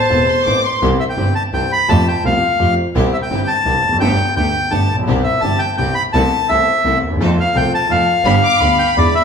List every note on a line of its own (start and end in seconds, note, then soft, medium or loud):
0.00 0.60 C5 medium
0.00 0.26 A5 medium
0.10 0.25 E1 soft
0.10 0.26 E1 soft
0.10 0.25 E2 soft
0.10 0.25 E3 soft
0.10 0.25 B3 soft
0.10 0.26 C4 soft
0.10 0.26 A4 soft
0.10 0.26 B4 soft
0.29 0.47 C6 medium
0.45 0.62 A1 medium
0.45 0.62 A1 soft
0.45 0.62 A2 soft
0.45 0.61 E3 soft
0.45 0.62 B3 soft
0.45 0.61 C4 soft
0.45 0.62 C4 soft
0.45 0.62 A4 soft
0.45 0.62 B4 soft
0.45 0.64 D6 medium
0.64 0.82 C6 medium
0.82 0.97 C2 medium
0.82 0.97 C3 medium
0.82 0.97 E3 medium
0.82 0.97 G3 medium
0.82 0.97 C4 medium
0.82 0.97 E4 medium
0.82 0.97 G4 medium
1.00 1.04 E5 medium
1.10 1.34 G5 medium
1.17 1.33 G1 soft
1.17 1.33 G1 medium
1.17 1.33 G2 soft
1.17 1.32 E3 soft
1.17 1.32 G3 soft
1.17 1.32 C4 soft
1.17 1.33 C4 soft
1.17 1.33 E4 soft
1.17 1.33 G4 soft
1.35 1.43 A5 medium
1.53 1.68 C2 soft
1.53 1.68 C2 medium
1.53 1.68 C3 soft
1.53 1.68 E3 soft
1.53 1.68 G3 soft
1.53 1.68 C4 soft
1.53 1.68 E4 soft
1.53 1.68 G4 soft
1.53 1.72 G5 medium
1.72 1.90 B5 medium
1.88 2.04 F2 medium
1.88 2.04 F3 medium
1.88 2.03 A3 medium
1.88 2.04 A3 medium
1.88 2.04 C4 medium
1.88 2.03 F4 medium
1.88 2.04 G4 medium
1.88 2.07 A5 medium
2.08 2.24 G5 medium
2.24 2.39 C2 medium
2.24 2.40 C3 medium
2.24 2.39 F3 soft
2.24 2.39 A3 soft
2.24 2.40 C4 soft
2.24 2.39 F4 soft
2.24 2.39 G4 soft
2.24 2.40 G4 medium
2.24 2.74 F5 medium
2.59 2.74 F2 soft
2.59 2.75 F2 medium
2.59 2.74 F3 medium
2.59 2.74 A3 soft
2.59 2.75 A3 soft
2.59 2.75 C4 soft
2.59 2.75 F4 soft
2.59 2.75 G4 medium
2.59 2.75 G4 soft
2.95 3.10 C2 medium
2.95 3.10 C3 medium
2.95 3.10 E3 medium
2.95 3.10 G3 medium
2.95 3.10 C4 medium
2.95 3.10 E4 medium
2.95 3.10 G4 medium
3.13 3.17 E5 medium
3.22 3.49 G5 medium
3.30 3.45 G1 medium
3.30 3.46 G1 medium
3.30 3.45 G2 medium
3.30 3.45 E3 soft
3.30 3.45 G3 soft
3.30 3.45 C4 soft
3.30 3.46 C4 soft
3.30 3.46 E4 soft
3.30 3.46 G4 soft
3.47 3.97 A5 medium
3.65 3.81 C2 soft
3.65 3.81 C2 medium
3.65 3.81 C3 medium
3.65 3.80 E3 soft
3.65 3.80 G3 soft
3.65 3.81 C4 soft
3.65 3.81 E4 soft
3.65 3.81 G4 soft
3.83 4.00 F1 soft
3.87 3.92 E2 soft
3.92 3.97 F2 medium
3.97 4.01 F#2 medium
3.97 4.35 G5 medium
4.01 4.16 G1 medium
4.01 4.16 G2 medium
4.01 4.16 D3 medium
4.01 4.16 A3 medium
4.01 4.16 B3 medium
4.01 4.16 G4 medium
4.01 4.16 A4 medium
4.36 4.52 D2 medium
4.36 4.52 D3 medium
4.36 4.51 A3 soft
4.36 4.52 B3 soft
4.36 4.52 G4 soft
4.36 4.52 A4 soft
4.36 4.73 G5 medium
4.71 4.87 G1 soft
4.71 4.87 G1 medium
4.71 4.87 G2 medium
4.71 4.86 D3 soft
4.71 4.86 A3 soft
4.71 4.87 B3 soft
4.71 4.87 G4 soft
4.71 4.87 A4 medium
4.71 4.96 A5 medium
4.90 4.98 A1 soft
4.90 5.07 A#1 soft
4.99 5.03 A#1 medium
5.03 5.08 B1 medium
5.03 5.22 C2 medium
5.07 5.23 C2 medium
5.07 5.23 C3 medium
5.07 5.23 E3 medium
5.07 5.23 G3 medium
5.07 5.22 C4 medium
5.07 5.23 C4 medium
5.07 5.23 E4 medium
5.07 5.23 G4 medium
5.24 5.41 E5 medium
5.41 5.58 G1 medium
5.41 5.58 G2 medium
5.41 5.58 E3 soft
5.41 5.58 G3 soft
5.41 5.58 C4 soft
5.41 5.58 E4 soft
5.41 5.58 G4 medium
5.41 5.58 G4 soft
5.41 5.61 A5 medium
5.59 5.76 G5 medium
5.77 5.93 C2 medium
5.77 5.94 C2 medium
5.77 5.93 C3 medium
5.77 5.93 E3 soft
5.77 5.93 G3 soft
5.77 5.94 C4 soft
5.77 5.94 E4 soft
5.77 5.93 G4 soft
5.77 5.94 G4 soft
5.77 5.95 G5 medium
5.95 6.03 B5 medium
6.13 6.29 C2 medium
6.13 6.29 C3 medium
6.13 6.29 E3 medium
6.13 6.29 A3 medium
6.13 6.29 C4 medium
6.13 6.29 E4 medium
6.13 6.29 A4 medium
6.13 6.50 A5 medium
6.49 6.64 C2 medium
6.49 6.65 C2 soft
6.49 6.65 C3 medium
6.49 6.64 E3 soft
6.49 6.64 A3 soft
6.49 6.65 C4 soft
6.49 6.65 E4 soft
6.49 6.65 A4 soft
6.49 6.98 E5 medium
6.84 7.00 C2 medium
6.84 7.00 C3 medium
6.84 6.99 E3 soft
6.84 6.99 A3 soft
6.84 7.00 C4 soft
6.84 7.00 E4 soft
6.84 7.00 A4 soft
6.84 7.00 A4 medium
7.03 7.20 D#2 soft
7.07 7.11 D2 medium
7.11 7.16 D#2 medium
7.16 7.20 E2 medium
7.20 7.35 F2 loud
7.20 7.35 F2 medium
7.20 7.36 F3 medium
7.20 7.35 A3 medium
7.20 7.35 C4 medium
7.20 7.36 C4 medium
7.20 7.35 F4 medium
7.20 7.35 A4 medium
7.40 7.57 F5 medium
7.54 7.70 C2 medium
7.54 7.70 C3 medium
7.54 7.70 F3 soft
7.54 7.70 A3 soft
7.54 7.70 C4 soft
7.54 7.70 F4 soft
7.54 7.70 A4 medium
7.54 7.73 G5 medium
7.75 7.92 A5 medium
7.89 8.05 F2 medium
7.89 8.05 F3 medium
7.89 8.05 A3 soft
7.89 8.05 C4 soft
7.89 8.06 C4 soft
7.89 8.06 F4 soft
7.89 8.05 A4 medium
7.89 8.06 A4 medium
7.89 8.94 F5 medium
8.24 8.40 G1 medium
8.24 8.41 G1 medium
8.24 8.41 G2 medium
8.24 8.41 D3 medium
8.24 8.41 G3 medium
8.24 8.41 B3 medium
8.24 8.41 D4 medium
8.24 8.41 G4 medium
8.24 8.33 B5 medium
8.43 8.60 D6 medium
8.60 8.76 D2 medium
8.60 8.76 D2 soft
8.60 8.76 D3 soft
8.60 8.76 G3 soft
8.60 8.76 B3 soft
8.60 8.76 D4 soft
8.60 8.76 G4 medium
8.60 8.76 G4 soft
8.60 9.24 B5 medium
8.79 8.96 G5 medium
8.96 9.12 E2 medium
8.96 9.12 E2 soft
8.96 9.12 D3 soft
8.96 9.13 E3 medium
8.96 9.12 G#3 soft
8.96 9.12 B3 soft
8.96 9.12 D4 soft
8.96 9.12 E4 soft
8.96 9.13 E4 soft
8.96 9.12 G#4 medium
8.96 9.14 D5 medium
9.15 9.24 E5 medium